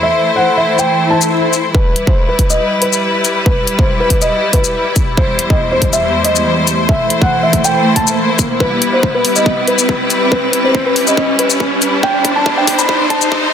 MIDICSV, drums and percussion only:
0, 0, Header, 1, 2, 480
1, 0, Start_track
1, 0, Key_signature, 1, "minor"
1, 0, Tempo, 428571
1, 36, Time_signature, 4, 2, 24, 8
1, 15157, End_track
2, 0, Start_track
2, 0, Title_t, "Drums"
2, 882, Note_on_c, 9, 82, 48
2, 994, Note_off_c, 9, 82, 0
2, 1361, Note_on_c, 9, 82, 77
2, 1473, Note_off_c, 9, 82, 0
2, 1716, Note_on_c, 9, 82, 52
2, 1828, Note_off_c, 9, 82, 0
2, 1955, Note_on_c, 9, 36, 107
2, 2067, Note_off_c, 9, 36, 0
2, 2195, Note_on_c, 9, 42, 81
2, 2307, Note_off_c, 9, 42, 0
2, 2321, Note_on_c, 9, 36, 100
2, 2433, Note_off_c, 9, 36, 0
2, 2675, Note_on_c, 9, 36, 61
2, 2675, Note_on_c, 9, 42, 77
2, 2787, Note_off_c, 9, 36, 0
2, 2787, Note_off_c, 9, 42, 0
2, 2801, Note_on_c, 9, 42, 35
2, 2801, Note_on_c, 9, 82, 48
2, 2913, Note_off_c, 9, 42, 0
2, 2913, Note_off_c, 9, 82, 0
2, 3155, Note_on_c, 9, 42, 76
2, 3267, Note_off_c, 9, 42, 0
2, 3281, Note_on_c, 9, 82, 74
2, 3393, Note_off_c, 9, 82, 0
2, 3635, Note_on_c, 9, 42, 80
2, 3635, Note_on_c, 9, 82, 50
2, 3747, Note_off_c, 9, 42, 0
2, 3747, Note_off_c, 9, 82, 0
2, 3876, Note_on_c, 9, 36, 117
2, 3988, Note_off_c, 9, 36, 0
2, 4115, Note_on_c, 9, 42, 82
2, 4227, Note_off_c, 9, 42, 0
2, 4242, Note_on_c, 9, 36, 104
2, 4354, Note_off_c, 9, 36, 0
2, 4595, Note_on_c, 9, 42, 80
2, 4596, Note_on_c, 9, 36, 62
2, 4707, Note_off_c, 9, 42, 0
2, 4708, Note_off_c, 9, 36, 0
2, 4721, Note_on_c, 9, 42, 38
2, 4721, Note_on_c, 9, 82, 48
2, 4833, Note_off_c, 9, 42, 0
2, 4833, Note_off_c, 9, 82, 0
2, 5075, Note_on_c, 9, 42, 77
2, 5076, Note_on_c, 9, 36, 64
2, 5187, Note_off_c, 9, 42, 0
2, 5188, Note_off_c, 9, 36, 0
2, 5201, Note_on_c, 9, 82, 76
2, 5313, Note_off_c, 9, 82, 0
2, 5555, Note_on_c, 9, 36, 109
2, 5555, Note_on_c, 9, 42, 80
2, 5555, Note_on_c, 9, 82, 50
2, 5667, Note_off_c, 9, 36, 0
2, 5667, Note_off_c, 9, 42, 0
2, 5667, Note_off_c, 9, 82, 0
2, 5795, Note_on_c, 9, 36, 122
2, 5907, Note_off_c, 9, 36, 0
2, 6035, Note_on_c, 9, 42, 83
2, 6147, Note_off_c, 9, 42, 0
2, 6161, Note_on_c, 9, 36, 105
2, 6273, Note_off_c, 9, 36, 0
2, 6515, Note_on_c, 9, 36, 65
2, 6515, Note_on_c, 9, 42, 79
2, 6627, Note_off_c, 9, 36, 0
2, 6627, Note_off_c, 9, 42, 0
2, 6641, Note_on_c, 9, 42, 36
2, 6641, Note_on_c, 9, 82, 51
2, 6753, Note_off_c, 9, 42, 0
2, 6753, Note_off_c, 9, 82, 0
2, 6995, Note_on_c, 9, 42, 79
2, 7107, Note_off_c, 9, 42, 0
2, 7121, Note_on_c, 9, 82, 79
2, 7233, Note_off_c, 9, 82, 0
2, 7475, Note_on_c, 9, 42, 82
2, 7475, Note_on_c, 9, 82, 51
2, 7587, Note_off_c, 9, 42, 0
2, 7587, Note_off_c, 9, 82, 0
2, 7715, Note_on_c, 9, 36, 117
2, 7827, Note_off_c, 9, 36, 0
2, 7955, Note_on_c, 9, 42, 76
2, 8067, Note_off_c, 9, 42, 0
2, 8082, Note_on_c, 9, 36, 105
2, 8194, Note_off_c, 9, 36, 0
2, 8435, Note_on_c, 9, 42, 73
2, 8436, Note_on_c, 9, 36, 64
2, 8547, Note_off_c, 9, 42, 0
2, 8548, Note_off_c, 9, 36, 0
2, 8562, Note_on_c, 9, 42, 36
2, 8562, Note_on_c, 9, 82, 52
2, 8674, Note_off_c, 9, 42, 0
2, 8674, Note_off_c, 9, 82, 0
2, 8916, Note_on_c, 9, 36, 64
2, 8916, Note_on_c, 9, 42, 75
2, 9028, Note_off_c, 9, 36, 0
2, 9028, Note_off_c, 9, 42, 0
2, 9042, Note_on_c, 9, 82, 79
2, 9154, Note_off_c, 9, 82, 0
2, 9395, Note_on_c, 9, 36, 106
2, 9395, Note_on_c, 9, 42, 78
2, 9395, Note_on_c, 9, 82, 55
2, 9507, Note_off_c, 9, 36, 0
2, 9507, Note_off_c, 9, 42, 0
2, 9507, Note_off_c, 9, 82, 0
2, 9636, Note_on_c, 9, 36, 102
2, 9748, Note_off_c, 9, 36, 0
2, 9875, Note_on_c, 9, 42, 76
2, 9987, Note_off_c, 9, 42, 0
2, 10116, Note_on_c, 9, 36, 106
2, 10228, Note_off_c, 9, 36, 0
2, 10356, Note_on_c, 9, 46, 88
2, 10468, Note_off_c, 9, 46, 0
2, 10482, Note_on_c, 9, 42, 33
2, 10482, Note_on_c, 9, 82, 54
2, 10594, Note_off_c, 9, 42, 0
2, 10594, Note_off_c, 9, 82, 0
2, 10596, Note_on_c, 9, 36, 105
2, 10708, Note_off_c, 9, 36, 0
2, 10836, Note_on_c, 9, 42, 73
2, 10948, Note_off_c, 9, 42, 0
2, 10962, Note_on_c, 9, 82, 86
2, 11074, Note_off_c, 9, 82, 0
2, 11076, Note_on_c, 9, 36, 106
2, 11188, Note_off_c, 9, 36, 0
2, 11315, Note_on_c, 9, 42, 74
2, 11315, Note_on_c, 9, 82, 55
2, 11427, Note_off_c, 9, 42, 0
2, 11427, Note_off_c, 9, 82, 0
2, 11555, Note_on_c, 9, 36, 103
2, 11667, Note_off_c, 9, 36, 0
2, 11796, Note_on_c, 9, 42, 77
2, 11908, Note_off_c, 9, 42, 0
2, 12035, Note_on_c, 9, 36, 109
2, 12147, Note_off_c, 9, 36, 0
2, 12276, Note_on_c, 9, 46, 95
2, 12388, Note_off_c, 9, 46, 0
2, 12402, Note_on_c, 9, 42, 35
2, 12402, Note_on_c, 9, 82, 54
2, 12514, Note_off_c, 9, 42, 0
2, 12514, Note_off_c, 9, 82, 0
2, 12515, Note_on_c, 9, 36, 109
2, 12627, Note_off_c, 9, 36, 0
2, 12755, Note_on_c, 9, 42, 72
2, 12867, Note_off_c, 9, 42, 0
2, 12882, Note_on_c, 9, 82, 85
2, 12994, Note_off_c, 9, 82, 0
2, 12995, Note_on_c, 9, 36, 102
2, 13107, Note_off_c, 9, 36, 0
2, 13236, Note_on_c, 9, 42, 78
2, 13236, Note_on_c, 9, 82, 55
2, 13348, Note_off_c, 9, 42, 0
2, 13348, Note_off_c, 9, 82, 0
2, 13475, Note_on_c, 9, 36, 107
2, 13587, Note_off_c, 9, 36, 0
2, 13715, Note_on_c, 9, 36, 106
2, 13716, Note_on_c, 9, 42, 80
2, 13827, Note_off_c, 9, 36, 0
2, 13828, Note_off_c, 9, 42, 0
2, 13955, Note_on_c, 9, 36, 107
2, 14067, Note_off_c, 9, 36, 0
2, 14195, Note_on_c, 9, 36, 104
2, 14196, Note_on_c, 9, 46, 99
2, 14307, Note_off_c, 9, 36, 0
2, 14308, Note_off_c, 9, 46, 0
2, 14322, Note_on_c, 9, 42, 35
2, 14322, Note_on_c, 9, 82, 54
2, 14434, Note_off_c, 9, 42, 0
2, 14434, Note_off_c, 9, 82, 0
2, 14435, Note_on_c, 9, 36, 100
2, 14547, Note_off_c, 9, 36, 0
2, 14675, Note_on_c, 9, 36, 107
2, 14675, Note_on_c, 9, 42, 79
2, 14787, Note_off_c, 9, 36, 0
2, 14787, Note_off_c, 9, 42, 0
2, 14801, Note_on_c, 9, 82, 83
2, 14913, Note_off_c, 9, 82, 0
2, 14915, Note_on_c, 9, 36, 102
2, 15027, Note_off_c, 9, 36, 0
2, 15157, End_track
0, 0, End_of_file